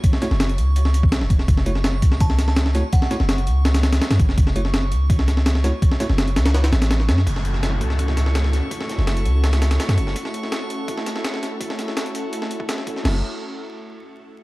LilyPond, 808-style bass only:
\new Staff \with { instrumentName = "808-style bass" } { \clef bass \time 4/4 \key fis \minor \tempo 4 = 166 r8. fis,,8. cis,4~ cis,16 b,,8 e,,8. | fis,,4. cis,2~ cis,16 r16 | r8. fis,,8. cis,4. r16 fis,16 fis,,8 | fis,,4. cis,2~ cis,16 r16 |
r8. fis,,8. cis,4 a,,4 fis,8 | fis,,4. cis,2~ cis,16 r16 | r8. fis,,8. cis,4. r16 fis,16 fis,,8 | r1 |
r1 | fis,,8 r2. r8 | }